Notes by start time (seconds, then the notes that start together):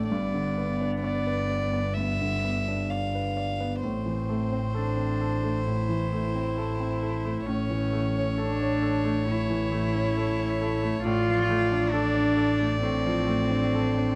Already playing: A1 A2 F3 A3 D4 A4
0.08 G1 G2 B3 D5
0.34 D3
0.58 B3
0.81 D4
1.00 D5
1.27 B4
1.51 D5
1.73 B3
1.94 G2 E5
2.21 D3
2.44 B3
2.68 D4
2.89 D5 F5
3.15 B4
3.37 D5
3.60 B3
3.81 A1 A2 C4 C5
4.06 E3
4.29 A3
4.52 C4
4.75 D4 A4
4.97 C4
5.21 A4
5.43 A3
5.66 A2 E4
5.89 E3
6.13 A3
6.35 C4
6.58 A4
6.80 C4
7.02 A4
7.25 A3
7.46 A1 A2 C#4 C#5
7.70 E3
7.93 A3
8.16 C#4
8.37 D4 A4
8.60 C#5
8.82 A4
9.04 A3
9.27 A2 E4
9.50 E3
9.72 A3
9.95 C#4
10.17 A4
10.39 C#4
10.62 A4
10.83 A3
11.03 A1 A2 F4 D5
11.28 F3
11.50 A3
11.72 D4
11.91 D4 A4
12.14 D4
12.37 A4
12.60 A3
12.80 A2 C4
13.06 F3
13.27 A3
13.51 D4
13.75 A4
13.98 D4